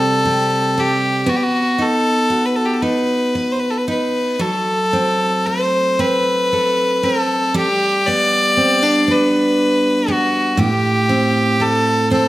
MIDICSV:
0, 0, Header, 1, 3, 480
1, 0, Start_track
1, 0, Tempo, 1013514
1, 609, Time_signature, 6, 3, 24, 8
1, 1094, Tempo, 1050788
1, 3494, Tempo, 1011804
1, 5732, End_track
2, 0, Start_track
2, 0, Title_t, "Fiddle"
2, 0, Program_c, 0, 110
2, 0, Note_on_c, 0, 69, 75
2, 376, Note_on_c, 0, 67, 68
2, 383, Note_off_c, 0, 69, 0
2, 611, Note_on_c, 0, 66, 68
2, 618, Note_off_c, 0, 67, 0
2, 645, Note_on_c, 0, 67, 55
2, 652, Note_off_c, 0, 66, 0
2, 678, Note_on_c, 0, 66, 69
2, 685, Note_off_c, 0, 67, 0
2, 861, Note_on_c, 0, 69, 77
2, 868, Note_off_c, 0, 66, 0
2, 1162, Note_on_c, 0, 71, 54
2, 1168, Note_off_c, 0, 69, 0
2, 1207, Note_on_c, 0, 69, 58
2, 1214, Note_off_c, 0, 71, 0
2, 1251, Note_on_c, 0, 67, 55
2, 1258, Note_off_c, 0, 69, 0
2, 1289, Note_on_c, 0, 69, 50
2, 1296, Note_off_c, 0, 67, 0
2, 1326, Note_on_c, 0, 71, 65
2, 1333, Note_off_c, 0, 69, 0
2, 1646, Note_on_c, 0, 72, 49
2, 1653, Note_off_c, 0, 71, 0
2, 1682, Note_on_c, 0, 71, 54
2, 1689, Note_off_c, 0, 72, 0
2, 1733, Note_on_c, 0, 69, 43
2, 1740, Note_off_c, 0, 71, 0
2, 1764, Note_on_c, 0, 71, 52
2, 1771, Note_off_c, 0, 69, 0
2, 1808, Note_off_c, 0, 71, 0
2, 1816, Note_on_c, 0, 71, 59
2, 2054, Note_on_c, 0, 69, 68
2, 2061, Note_off_c, 0, 71, 0
2, 2531, Note_on_c, 0, 72, 70
2, 2538, Note_off_c, 0, 69, 0
2, 2781, Note_on_c, 0, 71, 72
2, 2788, Note_off_c, 0, 72, 0
2, 3256, Note_on_c, 0, 69, 64
2, 3263, Note_off_c, 0, 71, 0
2, 3492, Note_off_c, 0, 69, 0
2, 3498, Note_on_c, 0, 67, 77
2, 3734, Note_on_c, 0, 74, 87
2, 3741, Note_off_c, 0, 67, 0
2, 4226, Note_on_c, 0, 71, 77
2, 4233, Note_off_c, 0, 74, 0
2, 4704, Note_on_c, 0, 66, 72
2, 4711, Note_off_c, 0, 71, 0
2, 4933, Note_on_c, 0, 67, 73
2, 4941, Note_off_c, 0, 66, 0
2, 5417, Note_on_c, 0, 69, 76
2, 5424, Note_off_c, 0, 67, 0
2, 5654, Note_off_c, 0, 69, 0
2, 5657, Note_on_c, 0, 69, 71
2, 5732, Note_off_c, 0, 69, 0
2, 5732, End_track
3, 0, Start_track
3, 0, Title_t, "Steel-string acoustic guitar"
3, 0, Program_c, 1, 25
3, 0, Note_on_c, 1, 48, 60
3, 0, Note_on_c, 1, 55, 47
3, 0, Note_on_c, 1, 60, 46
3, 0, Note_on_c, 1, 67, 37
3, 114, Note_off_c, 1, 67, 0
3, 120, Note_on_c, 1, 67, 46
3, 362, Note_off_c, 1, 55, 0
3, 367, Note_on_c, 1, 55, 44
3, 598, Note_on_c, 1, 59, 55
3, 599, Note_off_c, 1, 67, 0
3, 601, Note_on_c, 1, 71, 39
3, 607, Note_off_c, 1, 48, 0
3, 653, Note_off_c, 1, 60, 0
3, 656, Note_off_c, 1, 55, 0
3, 845, Note_on_c, 1, 63, 43
3, 1089, Note_on_c, 1, 66, 42
3, 1323, Note_off_c, 1, 63, 0
3, 1328, Note_on_c, 1, 63, 39
3, 1564, Note_off_c, 1, 71, 0
3, 1569, Note_on_c, 1, 71, 43
3, 1805, Note_off_c, 1, 63, 0
3, 1810, Note_on_c, 1, 63, 38
3, 2044, Note_off_c, 1, 59, 0
3, 2046, Note_off_c, 1, 71, 0
3, 2046, Note_on_c, 1, 54, 51
3, 2048, Note_on_c, 1, 69, 41
3, 2099, Note_off_c, 1, 63, 0
3, 2291, Note_on_c, 1, 60, 39
3, 2305, Note_off_c, 1, 66, 0
3, 2534, Note_on_c, 1, 57, 39
3, 2770, Note_off_c, 1, 60, 0
3, 2776, Note_on_c, 1, 60, 47
3, 3015, Note_off_c, 1, 69, 0
3, 3021, Note_on_c, 1, 69, 38
3, 3246, Note_off_c, 1, 60, 0
3, 3251, Note_on_c, 1, 60, 41
3, 3483, Note_off_c, 1, 54, 0
3, 3485, Note_off_c, 1, 69, 0
3, 3485, Note_on_c, 1, 55, 60
3, 3487, Note_on_c, 1, 67, 37
3, 3538, Note_off_c, 1, 60, 0
3, 3541, Note_off_c, 1, 57, 0
3, 3737, Note_on_c, 1, 59, 43
3, 3972, Note_on_c, 1, 60, 42
3, 4092, Note_off_c, 1, 60, 0
3, 4092, Note_on_c, 1, 62, 36
3, 4207, Note_off_c, 1, 59, 0
3, 4212, Note_on_c, 1, 59, 44
3, 4683, Note_off_c, 1, 59, 0
3, 4689, Note_on_c, 1, 59, 47
3, 4922, Note_on_c, 1, 45, 55
3, 4925, Note_off_c, 1, 67, 0
3, 4927, Note_on_c, 1, 67, 48
3, 4936, Note_off_c, 1, 55, 0
3, 4977, Note_off_c, 1, 59, 0
3, 4978, Note_off_c, 1, 62, 0
3, 5168, Note_on_c, 1, 60, 47
3, 5408, Note_on_c, 1, 57, 45
3, 5647, Note_off_c, 1, 60, 0
3, 5652, Note_on_c, 1, 60, 53
3, 5732, Note_off_c, 1, 45, 0
3, 5732, Note_off_c, 1, 57, 0
3, 5732, Note_off_c, 1, 60, 0
3, 5732, Note_off_c, 1, 67, 0
3, 5732, End_track
0, 0, End_of_file